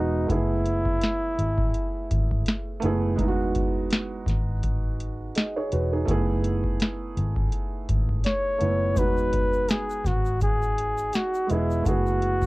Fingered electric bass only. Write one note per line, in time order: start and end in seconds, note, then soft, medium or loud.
0.00 0.27 E1 medium
0.30 0.98 F#1 loud
1.39 1.72 G#1 medium
2.11 2.44 G#1 loud
2.84 3.19 F#1 medium
3.19 3.87 E1 medium
4.27 5.31 G#1 medium
5.73 6.06 E1 medium
6.08 6.76 F#1 loud
7.17 7.50 G#1 medium
7.89 8.22 G#1 medium
8.61 8.97 F#1 medium
8.97 9.65 E1 medium
10.05 11.10 G#1 medium
11.51 11.84 E1 medium
11.86 12.46 F#1 loud